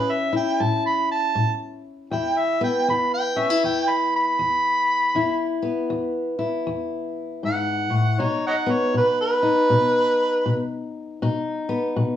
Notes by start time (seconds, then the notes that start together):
Already playing: A2 C#4 E4 B4
0.12 E5
0.33 E4 G5
0.60 A2 A5
0.86 B5
1.11 A5
1.35 A2
2.11 E2 E4 G5
2.38 E5
2.61 B3 G5
2.88 E2 B5
3.14 G5
3.36 C#4 E5
3.50 E4
3.64 E2 G5
3.91 B5
4.16 B5
4.39 E2
5.15 E2 E4
5.62 B3
5.90 E2
6.39 E4
6.67 E2
7.43 G#2 F#5
7.90 A2
8.20 B2 D#4 C#5
8.47 C#5 D#5 F#5
8.66 B3
8.72 C#5
8.94 B2 B4
9.21 B4
9.43 D#4
9.70 B2
10.46 B2
11.22 B2 D#4
11.69 B3
11.96 B2